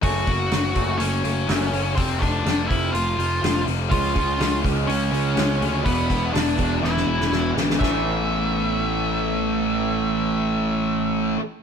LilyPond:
<<
  \new Staff \with { instrumentName = "Lead electric guitar" } { \time 4/4 \key a \major \tempo 4 = 124 <fis' fis''>2 <cis' cis''>2 | <c' c''>8 <d' d''>4 <e' e''>8 <f' f''>4. r8 | <eis' eis''>4. r8 <cis' cis''>2 | <b b'>4 <d' d''>4 <e' e''>4. r8 |
e''1~ | e''1 | }
  \new Staff \with { instrumentName = "Clean electric guitar" } { \clef bass \time 4/4 \key a \major <fis a cis'>8 <fis a>8 <fis a>8 <fis a cis'>8 <fis a>8 <fis a>8 <fis a cis'>8 <fis a>8 | <f, c f>8 <f, c>8 <f, c>8 <f, c f>8 <f, c>8 <f, c>8 <f, c f>8 <f, c>8 | <cis eis gis>8 <cis eis>8 <cis eis>8 <cis eis gis>8 <cis eis>8 <cis eis>8 <cis eis gis>8 <cis eis>8 | <e, b, e>8 r8 <e, b,>8 <e, b, e>8 <e, b,>8 <e, b,>8 <e, b, e>8 <e, b,>8 |
<a, e b cis' e'>1~ | <a, e b cis' e'>1 | }
  \new Staff \with { instrumentName = "Distorted electric guitar" } { \clef bass \time 4/4 \key a \major r1 | r1 | <cis gis cis'>8 <cis gis cis'>8 <cis gis cis'>8 <cis gis cis'>8 <cis gis cis'>8 <cis gis cis'>8 <cis gis cis'>8 <cis gis cis'>8 | <e, b, e>8 <e, b, e>8 <e, b, e>8 <e, b, e>8 <e, b, e>8 <e, b, e>8 <e, b, e>8 <e, b, e>8 |
<a, e a>1~ | <a, e a>1 | }
  \new Staff \with { instrumentName = "Distorted electric guitar" } { \clef bass \time 4/4 \key a \major <fis, cis fis>8 <fis, cis fis>8 <fis, cis fis>8 <fis, cis fis>8 <fis, cis fis>8 <fis, cis fis>8 <fis, cis fis>8 <fis, cis fis>8 | <f, c f>8 <f, c f>8 <f, c f>8 <f, c f>8 <f, c f>8 <f, c f>8 <f, c f>8 <f, c f>8 | <cis gis cis'>8 <cis gis cis'>8 <cis gis cis'>8 <cis gis cis'>8 <cis gis cis'>8 <cis gis cis'>8 <cis gis cis'>8 <cis gis cis'>8 | <e, b, e>8 <e, b, e>8 <e, b, e>8 <e, b, e>8 <e, b, e>8 <e, b, e>8 <e, b, e>8 <e, b, e>8 |
<a, e a>1~ | <a, e a>1 | }
  \new Staff \with { instrumentName = "Picked electric bass" } { \clef bass \time 4/4 \key a \major fis,,8 fis,,8 fis,,8 fis,,8 fis,,8 fis,,8 fis,,8 fis,,8 | f,,8 f,,8 f,,8 f,,8 f,,8 f,,8 f,,8 f,,8 | cis,8 cis,8 cis,8 cis,8 cis,8 cis,8 cis,8 d,8 | e,,8 e,,8 e,,8 e,,8 e,,8 e,,8 e,,8 gis,,8 |
a,,1~ | a,,1 | }
  \new DrumStaff \with { instrumentName = "Drums" } \drummode { \time 4/4 <hho bd>8 <hho bd>8 <hho sn>8 <hho bd>8 hho8 hho8 <hho sn>8 hho8 | <hho bd>8 <hho bd>8 <hho sn>8 <hho bd>8 hho8 hho8 <hho sn>8 hho8 | <hho bd>8 <hho bd>8 <hho sn>8 <hho bd>8 hho8 hho8 <hho sn>8 hho8 | <hho bd>8 <hho bd>8 <hho sn>8 <hho bd>8 sn16 sn8 sn16 sn8 sn16 sn16 |
<bd sn>4 r4 r4 r4 | r4 r4 r4 r4 | }
>>